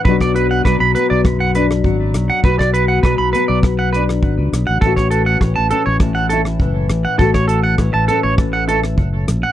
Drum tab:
HH |--x---x---x---x-|--x---x---x---x-|--x---x---x---x-|--x---x---x---x-|
SD |-r--r---r--r--r-|-r--r---r--r--r-|-r--r---r--r--r-|-r--r---r--r--r-|
BD |oo--o---o---o---|oo--o---o---o---|oo--o---o---o---|oo--o---o---o---|